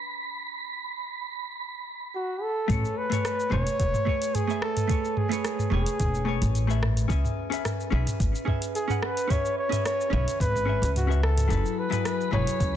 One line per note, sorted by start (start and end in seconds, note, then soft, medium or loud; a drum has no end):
0.00 2.65 C#4 medium
0.00 2.66 G#4 medium
0.00 2.67 B4 medium
0.00 2.68 E5 medium
0.00 1.60 B5 medium
2.15 2.44 F#4 medium
2.43 2.99 A4 loud
2.68 2.81 A1 loud
2.68 3.07 A3 medium
2.68 3.08 G#4 medium
2.68 3.08 B4 medium
2.68 3.09 C#5 medium
2.68 kick loud
2.68 closed hi-hat soft
2.68 mid tom medium
2.68 shaker medium
2.85 shaker soft
2.98 3.52 B4 loud
3.10 3.48 A3 medium
3.10 3.49 G#4 medium
3.10 3.49 B4 medium
3.10 3.50 C#5 loud
3.10 closed hi-hat medium
3.10 mid tom medium
3.10 shaker medium
3.25 cross-stick medium
3.25 closed hi-hat soft
3.25 shaker medium
3.40 shaker soft
3.50 3.64 E1 loud
3.50 4.03 A3 medium
3.50 4.04 G#4 medium
3.50 4.04 B4 medium
3.50 4.05 C#5 loud
3.50 4.37 C#5 loud
3.50 mid tom medium
3.67 closed hi-hat medium
3.67 shaker medium
3.80 3.91 E1 medium
3.80 kick loud
3.80 closed hi-hat soft
3.80 shaker medium
3.94 mid tom medium
3.94 shaker soft
4.05 4.45 A3 medium
4.05 4.45 G#4 medium
4.05 4.46 B4 medium
4.05 4.47 C#5 medium
4.05 kick medium
4.22 closed hi-hat medium
4.22 shaker medium
4.35 4.63 G#4 loud
4.35 closed hi-hat soft
4.35 mid tom medium
4.35 shaker soft
4.47 4.86 A3 medium
4.47 4.86 G#4 medium
4.47 4.87 B4 medium
4.47 4.87 E5 loud
4.47 shaker soft
4.62 5.19 A4 loud
4.62 cross-stick medium
4.77 closed hi-hat medium
4.77 mid tom medium
4.77 shaker medium
4.87 5.27 A3 medium
4.87 5.28 G#4 medium
4.87 5.28 B4 medium
4.87 5.29 C#5 medium
4.87 kick loud
4.87 closed hi-hat soft
4.87 shaker medium
5.05 shaker soft
5.17 5.73 G#4 loud
5.17 mid tom medium
5.29 5.68 A3 medium
5.29 5.69 G#4 medium
5.29 5.69 B4 medium
5.29 5.70 C#5 loud
5.29 closed hi-hat medium
5.29 shaker medium
5.45 cross-stick medium
5.45 closed hi-hat soft
5.45 shaker medium
5.59 mid tom medium
5.59 shaker soft
5.70 5.84 E1 medium
5.70 6.23 A3 loud
5.70 6.24 G#4 medium
5.70 6.52 G#4 loud
5.70 6.24 B4 medium
5.70 6.25 C#5 loud
5.86 closed hi-hat medium
5.86 shaker medium
6.00 6.37 E1 medium
6.00 kick loud
6.00 closed hi-hat soft
6.00 mid tom medium
6.00 shaker medium
6.15 shaker soft
6.25 6.65 A3 medium
6.25 6.65 G#4 medium
6.25 6.66 B4 medium
6.25 6.66 C#5 medium
6.42 7.06 A1 medium
6.42 closed hi-hat medium
6.42 mid tom medium
6.42 shaker medium
6.55 closed hi-hat soft
6.55 shaker medium
6.67 7.06 A3 medium
6.67 7.06 G#4 medium
6.67 7.07 B4 medium
6.67 7.08 E5 loud
6.67 shaker soft
6.83 cross-stick medium
6.83 mid tom medium
6.97 closed hi-hat medium
6.97 shaker medium
7.08 7.21 C#2 loud
7.08 7.47 C#4 medium
7.08 7.48 G#4 medium
7.08 7.49 B4 medium
7.08 7.49 E5 loud
7.08 kick loud
7.08 closed hi-hat soft
7.08 shaker medium
7.25 mid tom medium
7.25 shaker soft
7.50 7.88 C#4 loud
7.50 7.89 G#4 medium
7.50 7.90 B4 medium
7.50 7.90 E5 loud
7.50 closed hi-hat medium
7.50 shaker medium
7.65 cross-stick medium
7.65 closed hi-hat soft
7.65 mid tom medium
7.65 shaker medium
7.80 shaker soft
7.90 8.04 B1 loud
7.90 8.43 C#4 loud
7.90 8.44 G#4 medium
7.90 8.45 B4 medium
7.90 8.45 E5 loud
8.07 closed hi-hat medium
8.07 mid tom medium
8.07 shaker medium
8.20 8.32 G#1 medium
8.20 kick loud
8.20 closed hi-hat soft
8.20 shaker medium
8.35 shaker soft
8.45 8.85 C#4 medium
8.45 8.85 G#4 medium
8.45 8.86 B4 medium
8.45 8.87 E5 medium
8.45 kick medium
8.45 mid tom medium
8.62 closed hi-hat medium
8.62 shaker medium
8.75 9.05 G#4 loud
8.75 closed hi-hat soft
8.75 shaker medium
8.88 9.26 C#4 loud
8.88 9.27 G#4 medium
8.88 9.27 B4 medium
8.88 9.28 F#5 loud
8.88 mid tom medium
8.88 shaker soft
9.02 9.32 B4 loud
9.02 cross-stick medium
9.17 closed hi-hat medium
9.17 shaker medium
9.27 9.67 C#4 medium
9.27 9.68 G#4 medium
9.27 9.68 B4 medium
9.27 9.58 C#5 loud
9.27 9.69 E5 loud
9.27 kick loud
9.27 closed hi-hat soft
9.27 mid tom medium
9.27 shaker medium
9.46 shaker soft
9.58 9.84 C#5 loud
9.69 10.08 C#4 medium
9.69 10.09 G#4 medium
9.69 10.09 B4 medium
9.69 10.10 E5 loud
9.69 closed hi-hat medium
9.69 mid tom medium
9.69 shaker medium
9.85 10.11 C#5 loud
9.85 cross-stick medium
9.85 closed hi-hat soft
9.85 shaker medium
10.01 shaker soft
10.10 10.24 B1 loud
10.10 10.63 C#4 loud
10.10 10.64 G#4 medium
10.10 10.65 B4 medium
10.10 10.39 C#5 loud
10.10 10.65 E5 loud
10.10 mid tom medium
10.28 closed hi-hat medium
10.28 shaker medium
10.40 10.78 G#1 loud
10.40 10.92 B4 loud
10.40 kick loud
10.40 closed hi-hat soft
10.40 shaker medium
10.56 mid tom medium
10.56 shaker soft
10.65 11.05 C#4 medium
10.65 11.06 G#4 medium
10.65 11.06 B4 medium
10.65 11.07 E5 medium
10.82 11.46 C#2 medium
10.82 closed hi-hat medium
10.82 shaker medium
10.96 11.22 F#4 medium
10.96 closed hi-hat soft
10.96 mid tom medium
10.96 shaker soft
11.07 11.46 C#4 medium
11.07 11.46 G#4 medium
11.07 11.47 B4 medium
11.07 11.48 E5 medium
11.11 shaker soft
11.23 11.81 A4 loud
11.23 cross-stick medium
11.38 closed hi-hat medium
11.38 mid tom medium
11.38 shaker medium
11.48 11.62 F#1 loud
11.48 11.88 F#3 medium
11.48 11.88 E4 medium
11.48 11.88 G#4 medium
11.48 11.89 A4 medium
11.48 11.89 B4 medium
11.48 12.76 B5 medium
11.48 kick loud
11.48 closed hi-hat soft
11.48 mid tom medium
11.48 shaker medium
11.66 shaker soft
11.79 12.06 B4 medium
11.90 12.29 F#3 loud
11.90 12.29 E4 loud
11.90 12.29 G#4 medium
11.90 12.30 B4 loud
11.90 closed hi-hat medium
11.90 mid tom medium
11.90 shaker medium
12.05 12.32 B4 medium
12.05 cross-stick medium
12.05 closed hi-hat soft
12.05 shaker medium
12.21 shaker soft
12.31 12.44 E1 loud
12.31 12.76 F#3 medium
12.31 12.76 E4 medium
12.31 12.76 G#4 medium
12.31 12.76 B4 loud
12.31 12.76 C#5 loud
12.31 mid tom medium
12.47 closed hi-hat medium
12.47 shaker medium
12.60 12.72 C#2 medium
12.60 kick loud
12.60 closed hi-hat soft
12.60 shaker medium